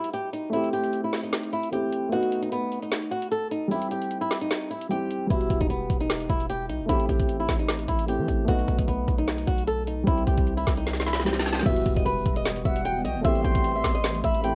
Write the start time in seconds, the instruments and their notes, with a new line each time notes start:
Already playing: grand piano G3 B3 E4 F#4
0.04 closed hi-hat
0.14 nylon-string guitar G4, closed hi-hat
0.33 nylon-string guitar D#4, closed hi-hat
0.50 grand piano A3 C4, nylon-string guitar E4, closed hi-hat
0.54 grand piano E4 G4
0.64 closed hi-hat
0.73 nylon-string guitar G4, closed hi-hat
0.84 closed hi-hat
0.93 closed hi-hat
1.04 nylon-string guitar E4
1.13 snare, open hi-hat
1.23 nylon-string guitar D#4, closed hi-hat
1.33 snare, closed hi-hat
1.43 closed hi-hat
1.53 nylon-string guitar E4, closed hi-hat
1.63 closed hi-hat
1.71 grand piano A3 C4 E4 G4, nylon-string guitar G4, closed hi-hat
1.92 closed hi-hat
2.09 grand piano A3 B3, nylon-string guitar F#4, closed hi-hat
2.13 grand piano D#4 F#4
2.23 closed hi-hat
2.32 closed hi-hat
2.42 nylon-string guitar D#4, closed hi-hat
2.52 nylon-string guitar B3, closed hi-hat
2.72 closed hi-hat
2.82 nylon-string guitar D#4, closed hi-hat
2.92 snare, closed hi-hat
3.02 closed hi-hat
3.11 nylon-string guitar F#4, closed hi-hat
3.22 closed hi-hat
3.32 nylon-string guitar A4, closed hi-hat
3.51 nylon-string guitar D#4, closed hi-hat
3.68 grand piano G3 C4, nylon-string guitar E4, closed hi-hat
3.72 grand piano E4 G4
3.82 closed hi-hat
3.91 nylon-string guitar G4, closed hi-hat
4.02 closed hi-hat
4.11 closed hi-hat
4.21 nylon-string guitar E4, closed hi-hat
4.31 snare, open hi-hat
4.41 nylon-string guitar D#4, closed hi-hat
4.51 snare, closed hi-hat
4.61 closed hi-hat
4.70 nylon-string guitar E4, closed hi-hat
4.81 closed hi-hat
4.89 grand piano G3 C4 E4 G4, nylon-string guitar G4, closed hi-hat
5.10 closed hi-hat
5.27 808-style bass E1, grand piano G3 B3, nylon-string guitar E4, kick, closed hi-hat
5.31 grand piano E4 F#4
5.41 closed hi-hat
5.50 808-style bass E1, kick, closed hi-hat
5.61 nylon-string guitar D#4, kick, closed hi-hat
5.70 808-style bass E1, nylon-string guitar B3, closed hi-hat
5.90 808-style bass E1, kick, closed hi-hat
6.00 nylon-string guitar D#4, closed hi-hat
6.10 snare, closed hi-hat
6.20 closed hi-hat
6.29 808-style bass E1, nylon-string guitar E4, kick, closed hi-hat
6.40 closed hi-hat
6.49 nylon-string guitar G4, closed hi-hat
6.69 808-style bass B1, nylon-string guitar D#4, closed hi-hat
6.80 808-style bass E1
6.86 808-style bass A1, grand piano A3 C4, nylon-string guitar E4, kick, closed hi-hat
6.90 grand piano E4 G4
7.00 closed hi-hat
7.09 808-style bass A1, nylon-string guitar G4, kick, closed hi-hat
7.20 kick, closed hi-hat
7.29 closed hi-hat
7.40 nylon-string guitar E4
7.49 808-style bass A1, kick, snare, open hi-hat
7.59 nylon-string guitar D#4, closed hi-hat
7.69 snare, closed hi-hat
7.79 closed hi-hat
7.88 808-style bass A1, nylon-string guitar E4, kick, closed hi-hat
7.99 closed hi-hat
8.07 grand piano A3 C4 E4 G4, nylon-string guitar G4, closed hi-hat
8.19 808-style bass E3
8.28 808-style bass A1, kick, closed hi-hat
8.45 808-style bass B1, grand piano A3 B3, nylon-string guitar F#4, kick, closed hi-hat
8.49 grand piano D#4 F#4
8.59 closed hi-hat
8.68 808-style bass B1, kick, closed hi-hat
8.78 nylon-string guitar D#4, kick, closed hi-hat
8.88 808-style bass B1, nylon-string guitar B3, closed hi-hat
9.08 808-style bass B1, kick, closed hi-hat
9.18 nylon-string guitar D#4, closed hi-hat
9.28 snare, closed hi-hat
9.38 closed hi-hat
9.47 808-style bass B1, nylon-string guitar F#4, kick, closed hi-hat
9.58 closed hi-hat
9.67 nylon-string guitar A4, closed hi-hat
9.87 nylon-string guitar D#4, closed hi-hat
10.04 808-style bass C2, grand piano G3 C4, nylon-string guitar E4, kick, closed hi-hat
10.08 grand piano E4 G4
10.18 closed hi-hat
10.27 808-style bass C2, nylon-string guitar G4, kick, closed hi-hat
10.37 kick, closed hi-hat
10.47 closed hi-hat
10.57 nylon-string guitar E4, closed hi-hat
10.67 808-style bass C2, kick, snare, open hi-hat
10.77 nylon-string guitar D#4, closed hi-hat
10.87 snare, closed hi-hat
10.93 snare, closed hi-hat
11.00 snare
11.06 nylon-string guitar E4, snare, closed hi-hat
11.13 snare, closed hi-hat
11.20 snare
11.25 grand piano G3 C4 E4 G4, nylon-string guitar G4, snare, closed hi-hat
11.33 snare
11.39 snare
11.46 snare, closed hi-hat
11.53 snare
11.59 grand piano G3, snare
11.65 808-style bass E1, ambient pad E3 G3 B3 F#4, grand piano B3 E4, nylon-string guitar E5, kick, closed hi-hat, crash, impact
11.69 grand piano F#4
11.76 closed hi-hat
11.86 808-style bass E1, kick, closed hi-hat
11.96 nylon-string guitar D#5, kick, closed hi-hat
12.05 808-style bass E1, nylon-string guitar B4, closed hi-hat
12.26 808-style bass E1, kick, closed hi-hat
12.36 nylon-string guitar D#5, closed hi-hat
12.45 snare, closed hi-hat
12.56 closed hi-hat
12.65 808-style bass E1, nylon-string guitar E5, flute F#5, kick, closed hi-hat
12.76 closed hi-hat
12.85 nylon-string guitar G5, closed hi-hat
13.05 808-style bass B1, nylon-string guitar D#5, flute G5, closed hi-hat
13.16 808-style bass E1
13.22 808-style bass A1, grand piano A3 C4, ambient pad A3 C4 G4, nylon-string guitar E5, flute C6, kick, closed hi-hat
13.26 grand piano E4 G4
13.35 closed hi-hat
13.45 808-style bass A1, nylon-string guitar G5, kick, closed hi-hat
13.55 kick, closed hi-hat
13.65 closed hi-hat
13.76 nylon-string guitar E5
13.84 808-style bass A1, kick, snare, open hi-hat
13.95 nylon-string guitar D#5, closed hi-hat
14.04 snare, closed hi-hat
14.15 closed hi-hat
14.24 808-style bass A1, nylon-string guitar E5, flute B5, kick, closed hi-hat
14.35 closed hi-hat
14.42 grand piano A3 C4 E4 G4, nylon-string guitar G5, closed hi-hat